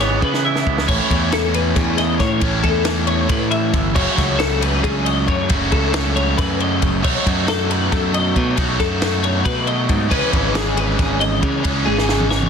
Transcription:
Already playing: picked electric bass G#1, overdriven electric guitar C#3 E3 G#3 C#4, clean electric guitar E3 E4
0.00 clean electric guitar B3 C#5, snare, ride
0.22 picked electric bass C#3, clean electric guitar E3 B4, kick
0.34 snare
0.45 clean electric guitar E4 E5
0.56 snare
0.67 picked electric bass C#2, clean electric guitar B3, kick
0.78 snare
0.86 picked electric bass A1, overdriven electric guitar A2 E3 A3 C#4 E4, clean electric guitar C#5, kick, crash
1.11 picked electric bass E2, kick, ride
1.32 clean electric guitar A4, snare, ride
1.54 clean electric guitar B4, ride
1.75 picked electric bass E2, clean electric guitar G#4, kick, snare, ride
1.98 clean electric guitar D#5, snare, ride
2.19 picked electric bass A2, clean electric guitar C#5, kick, snare, ride
2.40 picked electric bass A1, overdriven electric guitar A2 E3 A3 C#4 E4, kick, ride
2.63 picked electric bass E2, clean electric guitar A4, kick, ride
2.85 snare, ride
3.07 clean electric guitar C#5, ride
3.29 picked electric bass A2, clean electric guitar B4, kick, ride
3.51 clean electric guitar E5, ride
3.73 picked electric bass G1, kick, ride
3.94 picked electric bass F#1, overdriven electric guitar F#2 C#3 F#3 A3 C#4 F#4, clean electric guitar C#5, kick, crash
4.18 picked electric bass C#2, kick, snare, ride
4.39 clean electric guitar A4, snare, ride
4.61 clean electric guitar B4, ride
4.83 picked electric bass C#2, clean electric guitar G#4, kick, ride
5.05 clean electric guitar D#5, ride
5.28 picked electric bass F#2, clean electric guitar C#5, kick, ride
5.49 picked electric bass F#1, overdriven electric guitar F#2 C#3 F#3 A3 C#4 F#4, kick, ride
5.72 picked electric bass C#2, clean electric guitar A4, kick, ride
5.94 snare, ride
6.16 clean electric guitar C#5, ride
6.37 picked electric bass F#2, clean electric guitar B4, kick, snare, ride
6.60 clean electric guitar D#5, ride
6.82 picked electric bass F#1, kick, ride
7.03 picked electric bass B1, overdriven electric guitar B2 F#3 A3 D#4 F#4, clean electric guitar C#5, kick, crash
7.26 picked electric bass F#2, kick, ride
7.48 clean electric guitar A4, snare, ride
7.70 clean electric guitar B4, ride
7.92 picked electric bass F#2, clean electric guitar A4, kick, snare, ride
8.14 clean electric guitar D#5, ride
8.35 picked electric bass B2, clean electric guitar C#5, kick, ride
8.56 picked electric bass B1, overdriven electric guitar B2 F#3 A3 D#4 F#4, kick, ride
8.80 picked electric bass F#2, clean electric guitar A4, kick, snare, ride
9.02 snare, ride
9.23 clean electric guitar C#5, ride
9.45 picked electric bass B2, clean electric guitar B4, kick, ride
9.67 clean electric guitar D#5, ride
9.89 picked electric bass G#2, kick, ride
10.09 picked electric bass C#2, overdriven electric guitar C#3 E3 G#3 C#4, clean electric guitar B4, kick, crash
10.33 picked electric bass G#1, kick, ride
10.55 clean electric guitar G#4, snare, ride
10.77 clean electric guitar B4, ride
10.99 picked electric bass G#1, clean electric guitar G#4, kick, snare, ride
11.20 clean electric guitar D#5, ride
11.42 picked electric bass C#3, clean electric guitar C#5, kick, ride
11.63 picked electric bass C#2, overdriven electric guitar C#3 E3 G#3 C#4, kick, ride
11.86 picked electric bass G#1, clean electric guitar G#4, high tom
11.98 snare
12.09 snare
12.20 mid tom
12.31 clean electric guitar C#5, snare
12.42 mid tom

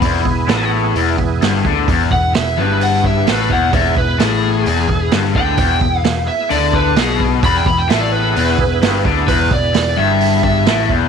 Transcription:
Already playing: lead electric guitar B5
0.02 picked electric bass E1, overdriven electric guitar E2, tonewheel organ C4 F4 A4, kick, open hi-hat
0.20 tonewheel organ B3 E4 G#4
0.25 picked electric bass E1, overdriven electric guitar E2, kick
0.48 picked electric bass A1, overdriven electric guitar A2, snare, open hi-hat
0.95 picked electric bass E1, overdriven electric guitar E2, open hi-hat
1.18 picked electric bass E1, overdriven electric guitar E2, kick
1.42 picked electric bass G1, overdriven electric guitar G2, snare, open hi-hat
1.65 picked electric bass D2, overdriven electric guitar D3, kick
1.88 picked electric bass E1, overdriven electric guitar E2, kick, open hi-hat
2.11 picked electric bass E1, overdriven electric guitar E2, lead electric guitar F#5, kick
2.34 picked electric bass E1, overdriven electric guitar E2, lead electric guitar E5, snare, open hi-hat
2.58 picked electric bass G1, overdriven electric guitar G2, lead electric guitar B4
2.81 lead electric guitar F#5, open hi-hat
3.04 lead electric guitar E5, kick
3.27 picked electric bass A1, overdriven electric guitar A2, lead electric guitar B4, snare, open hi-hat
3.50 picked electric bass E1, overdriven electric guitar E2, lead electric guitar F#5, kick
3.73 picked electric bass E1, overdriven electric guitar E2, tonewheel organ C4 F4 A4, lead electric guitar E5, kick, open hi-hat
3.90 tonewheel organ B3 E4 G#4
3.97 picked electric bass E1, overdriven electric guitar E2, lead electric guitar B4, kick
4.19 picked electric bass A1, overdriven electric guitar A2, lead electric guitar G#4, snare, open hi-hat
4.66 picked electric bass E1, overdriven electric guitar E2, open hi-hat
4.89 picked electric bass E1, overdriven electric guitar E2, kick
5.11 picked electric bass G1, overdriven electric guitar G2, snare, open hi-hat
5.24 snare
5.34 picked electric bass D2, overdriven electric guitar D3, lead electric guitar G5, kick
5.57 picked electric bass E1, overdriven electric guitar E2, kick, open hi-hat
5.81 picked electric bass E1, overdriven electric guitar E2, kick
5.98 lead electric guitar F5
6.04 picked electric bass E1, overdriven electric guitar E2, snare, open hi-hat
6.28 lead electric guitar E5
6.50 picked electric bass D2, overdriven electric guitar D3, lead electric guitar D5, open hi-hat
6.73 lead electric guitar B4, kick
6.96 picked electric bass B1, overdriven electric guitar B2, lead electric guitar G#4, snare, open hi-hat
7.10 snare
7.20 kick
7.43 picked electric bass E1, overdriven electric guitar E2, tonewheel organ B3 E4 G#4, lead electric guitar B5, kick, open hi-hat
7.57 lead electric guitar G5
7.66 picked electric bass E1, overdriven electric guitar E2, lead electric guitar B5, kick
7.78 lead electric guitar G5
7.89 picked electric bass A1, overdriven electric guitar A2, lead electric guitar E5, snare, open hi-hat
8.01 lead electric guitar D5
8.12 lead electric guitar B4
8.36 picked electric bass E1, overdriven electric guitar E2, open hi-hat
8.59 picked electric bass E1, overdriven electric guitar E2, kick
8.82 picked electric bass G1, overdriven electric guitar G2, snare, open hi-hat
9.05 picked electric bass D2, overdriven electric guitar D3, kick
9.28 picked electric bass E1, overdriven electric guitar E2, lead electric guitar B4, kick, open hi-hat
9.51 picked electric bass E1, overdriven electric guitar E2, lead electric guitar D5, kick
9.74 picked electric bass E1, overdriven electric guitar E2, snare, open hi-hat
9.97 picked electric bass G1, overdriven electric guitar G2, lead electric guitar E5
10.21 open hi-hat
10.43 lead electric guitar E5, kick
10.66 picked electric bass A1, overdriven electric guitar A2, snare, open hi-hat
10.89 picked electric bass E1, overdriven electric guitar E2, kick

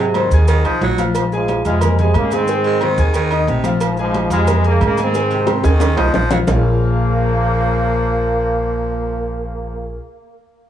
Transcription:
Already playing: upright bass G#2, trombone section C3 F#3
0.14 baritone saxophone D#3, grand piano C4 C5 C6, cowbell, high conga, low agogo, maracas
0.31 upright bass D#2, grand piano G#4 G#5 G#6, maracas
0.48 baritone saxophone D#3, cowbell, high conga, low agogo, maracas
0.65 baritone saxophone F3, grand piano D#4 D#5 D#6, high conga, low agogo, maracas
0.81 upright bass A#1, baritone saxophone F#3, cowbell, high conga, low timbale, maracas
0.98 grand piano F3 F4 F5, cowbell, high conga, low agogo, maracas
1.15 trombone section G#2 F3, cowbell, high conga, low agogo, maracas
1.32 trombone section G#2 F3, grand piano G#3 G#4 G#5, high conga, maracas
1.48 cowbell, high conga, low agogo, maracas
1.65 upright bass F2, trombone section C3 G#3, grand piano F4 F5 F6, high conga, low agogo, maracas
1.81 grand piano A#3 A#4 A#5, cowbell, high conga, low conga, low agogo, maracas
1.98 trombone section C3 G#3, grand piano G#3 G#4 G#5, cowbell, high conga, low conga, maracas
2.14 upright bass G#2, trombone section C#3 A#3, cowbell, high conga, low agogo, maracas
2.30 trombone section D#3 C4, grand piano G#3 G#4 G#5, cowbell, high conga, low agogo, maracas
2.48 grand piano G#3 G#4 G#5, cowbell, high conga, maracas
2.64 baritone saxophone G#3, high conga, low agogo, maracas
2.81 baritone saxophone D#3, grand piano C4 C5 C6, cowbell, high conga, low agogo, maracas
2.98 upright bass D#2, grand piano G#4 G#5 G#6, maracas
3.14 baritone saxophone D#3, cowbell, high conga, low agogo, maracas
3.31 grand piano D#4 D#5 D#6, high conga, low agogo, maracas
3.48 upright bass A#1, baritone saxophone C3, cowbell, high conga, maracas
3.64 grand piano F3 F4 F5, cowbell, high conga, low agogo, maracas
3.81 trombone section G#2 F3, cowbell, high conga, low agogo, maracas
3.97 trombone section G#2 F3, grand piano G#3 G#4 G#5, high conga, maracas
4.14 cowbell, high conga, low agogo, maracas
4.30 upright bass F2, trombone section C3 G#3, grand piano F4 F5 F6, high conga, low agogo, maracas
4.47 grand piano A#3 A#4 A#5, cowbell, high conga, low conga, low agogo, maracas
4.64 trombone section C#3 A#3, grand piano G#3 G#4 G#5, cowbell, high conga, maracas
4.81 upright bass G#2, cowbell, high conga, low agogo, maracas
4.85 trombone section C#3 A#3
4.97 trombone section D#3, grand piano G#3 G#4 G#5, cowbell, high conga, low agogo, maracas
5.02 trombone section C4
5.14 grand piano G#3 G#4 G#5, cowbell, high conga, maracas
5.31 baritone saxophone C3, low agogo, maracas
5.47 grand piano C4 C5 C6, cowbell, high bongo, high conga, high timbale, low agogo, maracas
5.64 upright bass D#2, baritone saxophone D#3, grand piano G#4 G#5 G#6, high bongo, high timbale, maracas
5.80 cowbell, low bongo, high conga, high timbale, low agogo, maracas
5.97 upright bass C2, baritone saxophone F3, grand piano D#4 D#5 D#6, high conga, low timbale, low agogo, maracas
6.08 high conga
6.14 upright bass A#1, baritone saxophone F3, cowbell, low bongo, low timbale, maracas
6.31 grand piano F3 F4 F5, baritone saxophone F#3, cowbell, low bongo, low conga, low timbale, low agogo, maracas
6.47 upright bass A#1, baritone saxophone F3, grand piano A#3 F4 G#4 A#4 C#5 F5, trombone section A#3, low bongo, low conga, low timbale, maracas

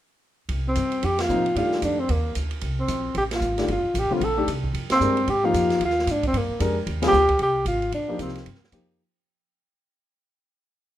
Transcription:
0.49 upright bass C2, ride
0.68 tenor saxophone C4
0.75 upright bass G2, hi-hat pedal, ride
0.92 ride
1.03 upright bass F2, tenor saxophone G4, ride
1.19 tenor saxophone F4, snare, ride
1.29 upright bass A2, grand piano C3 F3 A#3 D#4, hi-hat pedal
1.46 ride
1.55 upright bass G2, grand piano D#3 A3 D4 G4, tenor saxophone F4, ride
1.72 snare
1.82 upright bass F2, tenor saxophone D4, hi-hat pedal, ride
2.00 tenor saxophone C4
2.09 upright bass D#2, tenor saxophone A#3, ride
2.35 upright bass D2, hi-hat pedal, ride
2.51 ride
2.61 upright bass C2, ride
2.80 tenor saxophone C4
2.88 upright bass A#1, hi-hat pedal, ride
3.15 upright bass A1, tenor saxophone G4, ride
3.31 tenor saxophone F4, snare, ride
3.41 upright bass G#1, hi-hat pedal
3.58 grand piano D#3 A3 D4 G4, snare, ride
3.68 upright bass G1, ride
3.72 tenor saxophone F4
3.84 muted upright bass stroke
3.94 upright bass A1, hi-hat pedal, ride
3.99 tenor saxophone G4
4.10 grand piano D3 G3 C4 F4, tenor saxophone F4, muted upright bass stroke
4.20 upright bass A#1, tenor saxophone A4, ride
4.37 grand piano D#3 A3 D4 G4
4.47 upright bass C2, hi-hat pedal, ride
4.64 kick
4.73 upright bass F2, ride
4.90 tenor saxophone C4, muted upright bass stroke, snare, ride
5.00 upright bass G2, grand piano G#3 D4 G4 A#4, hi-hat pedal
5.17 ride
5.27 upright bass G#2, tenor saxophone G4, ride
5.43 grand piano F3 A#3 D#4 G4, tenor saxophone F4
5.53 upright bass F2, hi-hat pedal, ride
5.70 snare, ride
5.80 upright bass D#2, ride
5.85 tenor saxophone F4
5.90 snare
5.99 snare
6.07 upright bass G#2, hi-hat pedal, ride
6.11 tenor saxophone D4
6.23 tenor saxophone C4, kick, ride
6.33 upright bass G2, ride
6.37 tenor saxophone A#3
6.49 muted upright bass stroke
6.60 upright bass F2, grand piano G#3 D4 G4 A#4, hi-hat pedal, ride
6.87 upright bass D#2, ride
7.02 grand piano G3 C4 F4 G#4, snare, ride
7.07 tenor saxophone G4
7.12 upright bass D2, hi-hat pedal
7.29 kick, ride
7.39 upright bass C2, tenor saxophone G4, ride
7.65 upright bass G#1, tenor saxophone F4, hi-hat pedal, ride
7.82 ride
7.92 upright bass A#1, tenor saxophone D4, ride
8.08 grand piano F3 A#3 D#4 G4
8.19 upright bass C2, tenor saxophone C4, hi-hat pedal, ride
8.28 snare
8.35 snare, ride
8.46 upright bass G2, ride
8.55 snare
8.64 snare
8.71 upright bass F2, grand piano F3 A#3 D#4 G4, hi-hat pedal, ride

